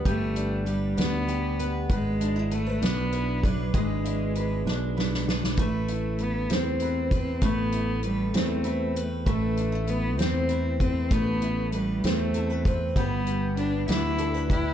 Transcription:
<<
  \new Staff \with { instrumentName = "Steel-string acoustic guitar" } { \time 6/8 \key a \dorian \tempo 4. = 65 <g d' g' b'>8 d'8 b'8 d'8 g'8 b'8 | b'8 d'8 b'8 d'8 e'8 b'8 | <gis b'>8 d'8 b'8 d'8 e'8 b'8 | <a b'>4 b'4 e'8 b'8 |
<a b'>4 b'8 c'8 e'8 b'8 | <a b'>4 b'4 e'8 b'8 | <a b'>4 b'8 c'8 e'8 b'8 | <b g'>8 b8 g'8 b8 d'8 g'8 | }
  \new Staff \with { instrumentName = "Nylon-string guitar" } { \time 6/8 \key a \dorian <g b d' g'>8 d'8 g'8 b8 g'8 b8 | b'8 d'16 e'16 a'16 b'16 d'8 b'8 d'8 | <gis b'>8 e'8 b'8 d'8 b'8 d'8 | <a b'>8 e'8 b'8 c'8 b'4 |
<a b'>8 e'8 b'8 c'8 b'4 | <a b'>8 d'16 e'16 b'8 c'8 b'4 | <a b'>8 e'8 b'8 c'8 a'16 b'16 c'8 | <g b'>8 g'8 b'8 d'8 a'16 b'16 d'8 | }
  \new Staff \with { instrumentName = "Cello" } { \time 6/8 \key a \dorian a4 g8 b4 r8 | gis4 a8 b4 fis8 | gis2 r4 | a4 b8 c'4 c'8 |
b4 g8 a4 r8 | a4 b8 c'4 c'8 | b4 g8 a4 r8 | b4 d'8 e'4 e'8 | }
  \new Staff \with { instrumentName = "Fretless electric bass" } { \clef bass \time 6/8 \key a \dorian g,,4. d,4. | gis,,4. b,,4. | gis,,4. b,,4. | a,,4. e,4. |
a,,4. e,4. | a,,4. e,4. | a,,4. e,4. | g,,4. d,4. | }
  \new DrumStaff \with { instrumentName = "Drums" } \drummode { \time 6/8 <hh bd>8 hh8 hh8 <hh sn>8 hh8 hh8 | <hh bd>8 hh8 hh8 <hh sn>8 hh8 <hh bd>8 | <hh bd>8 hh8 hh8 sn8 sn16 sn16 sn16 sn16 | <hh bd>8 hh8 hh8 <hh sn>8 hh8 <hh bd>8 |
<hh bd>8 hh8 hh8 <hh sn>8 hh8 hh8 | <hh bd>8 hh8 hh8 <hh sn>8 hh8 <hh bd>8 | <hh bd>8 hh8 hh8 <hh sn>8 hh8 <hh bd>8 | <hh bd>8 hh8 hh8 <hh sn>8 hh8 <hh bd>8 | }
>>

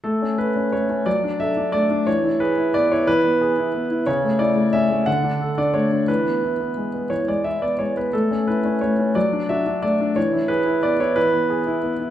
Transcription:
\new Staff \with { instrumentName = "Grand piano" } { \time 6/8 \key a \major \tempo 4. = 59 << { a'8 b'8 cis''8 d''8 e''8 d''8 | cis''8 b'8 d''16 cis''16 b'4. | cis''8 d''8 e''8 fis''8. d''16 cis''8 | b'4. cis''16 d''16 e''16 d''16 cis''16 b'16 |
a'8 b'8 cis''8 d''8 e''8 d''8 | cis''8 b'8 d''16 cis''16 b'4. | } \\ { a16 cis'16 a'16 cis'16 a16 cis'16 fis16 d'16 a'16 d'16 a16 d'16 | e16 e'16 gis'16 e'16 b16 e'16 e16 b16 gis'16 e'16 b16 e'16 | cis16 a16 e'16 a16 cis'16 a16 d16 d'16 a'16 d'16 a16 d'16 | e16 b16 e'16 b16 gis16 b16 e16 gis16 e'16 b16 gis16 b16 |
a16 cis'16 e'16 cis'16 a16 cis'16 fis16 d'16 fis'16 d'16 a16 d'16 | e16 e'16 gis'16 e'16 b16 e'16 e16 b16 gis'16 e'16 b16 e'16 | } >> }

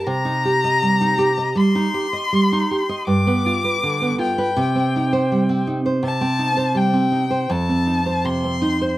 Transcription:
<<
  \new Staff \with { instrumentName = "Violin" } { \time 4/4 \key c \dorian \tempo 4 = 80 bes''2 c'''2 | d'''4. g''2 r8 | a''4 g''4 a''4 c'''4 | }
  \new Staff \with { instrumentName = "Nylon-string guitar" } { \time 4/4 \key c \dorian c16 ees'16 g'16 ees''16 g16 ees'16 g'16 ees''16 g16 ees'16 g'16 ees''16 g16 ees'16 g'16 ees''16 | g,16 b16 f'16 b'16 d16 b16 f'16 b'16 c16 c'16 ees'16 c''16 g16 c'16 ees'16 c''16 | c16 c'16 ees'16 c''16 g16 c'16 ees'16 c''16 f,16 c'16 ees'16 c''16 c16 c'16 ees'16 c''16 | }
>>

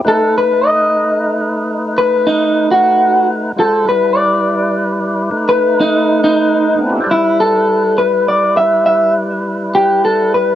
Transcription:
<<
  \new Staff \with { instrumentName = "Clean electric guitar" } { \time 12/8 \key e \minor \tempo 4. = 68 a'8 b'8 dis''2~ dis''16 b'8 dis'8. fis'4 r8 | a'8 b'8 d''2~ d''16 b'8 dis'8. dis'4 r8 | e'8 a'4 b'8 d''8 e''8 e''8 r4 g'8 a'8 b'8 | }
  \new Staff \with { instrumentName = "Tonewheel organ" } { \time 12/8 \key e \minor << { r1. | r1. | <a b c' d' e' f' g' a' b' c'' d''>8 r1 r4. | } \\ { <a dis' b'>1. | <gis f' c''>8 <g e' b'>2~ <g e' b'>8 <a dis' b'>2. | <g e' b'>1. | } >> }
>>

